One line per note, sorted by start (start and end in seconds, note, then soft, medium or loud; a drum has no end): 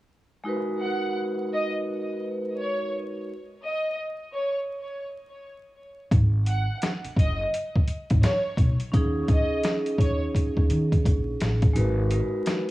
0.44 0.76 G#3 medium
0.44 0.77 D#4 medium
0.44 0.77 F#4 medium
0.44 0.78 A#4 medium
0.49 0.79 B4 medium
0.81 2.03 G#3 medium
0.81 2.03 D#4 medium
0.81 2.04 F#4 medium
0.81 1.13 F#5 medium
0.85 2.04 A#4 medium
0.85 2.05 B4 medium
1.54 1.73 D#5 medium
2.57 2.90 C#5 medium
3.64 3.96 D#5 medium
4.34 4.54 C#5 medium
6.11 6.65 G#1 loud
6.11 kick loud
6.11 closed hi-hat medium
6.46 6.79 F#5 medium
6.46 closed hi-hat medium
6.82 snare loud
6.82 closed hi-hat medium
7.04 muted upright bass stroke soft
7.04 closed hi-hat medium
7.16 7.44 F#1 medium
7.16 7.38 D#5 medium
7.16 kick medium
7.16 closed hi-hat medium
7.54 closed hi-hat medium
7.75 kick medium
7.87 closed hi-hat medium
8.10 8.21 G#1 medium
8.10 kick medium
8.10 closed hi-hat soft
8.22 8.54 C#5 medium
8.22 snare loud
8.22 closed hi-hat medium
8.57 8.75 B1 medium
8.57 kick medium
8.57 closed hi-hat medium
8.80 closed hi-hat medium
8.92 9.21 D#2 loud
8.92 9.22 C#4 medium
8.92 9.25 D#4 medium
8.92 kick loud
8.92 closed hi-hat medium
8.97 9.26 G#4 loud
9.23 10.47 C#4 medium
9.23 10.49 D#4 medium
9.28 9.45 C#2 medium
9.28 10.50 G#4 medium
9.28 9.62 D#5 medium
9.28 kick medium
9.28 closed hi-hat medium
9.64 snare loud
9.64 closed hi-hat medium
9.86 closed hi-hat soft
9.98 10.26 D#2 medium
9.98 10.19 C#5 medium
9.98 kick medium
9.98 closed hi-hat medium
10.35 kick medium
10.35 closed hi-hat medium
10.57 10.67 D#2 medium
10.57 kick soft
10.70 10.97 D#3 medium
10.70 closed hi-hat medium
10.92 kick medium
10.92 closed hi-hat medium
11.05 11.32 A#1 medium
11.05 kick medium
11.05 closed hi-hat medium
11.40 11.68 A1 medium
11.40 snare medium
11.40 closed hi-hat medium
11.62 kick medium
11.62 closed hi-hat medium
11.73 12.20 G#1 loud
11.73 12.06 G#3 medium
11.73 12.06 D#4 medium
11.73 12.07 F#4 medium
11.73 12.07 A#4 medium
11.73 closed hi-hat medium
11.78 12.08 B4 medium
12.11 12.71 G#3 medium
12.11 12.71 D#4 medium
12.11 12.71 F#4 medium
12.11 12.71 A#4 medium
12.11 closed hi-hat medium
12.15 12.71 B4 medium
12.46 snare loud
12.46 closed hi-hat medium